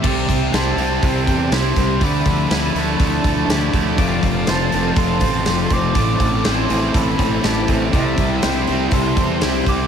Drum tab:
CC |x-------|--------|--------|--------|
HH |-ooooooo|oooooooo|oooooooo|oooooooo|
SD |--o---o-|--o---o-|--o---o-|--o---o-|
BD |oo--oo-o|oo--oo-o|oo--oo-o|oo--oo-o|

CC |--------|
HH |oooooooo|
SD |--o---o-|
BD |oo--oo-o|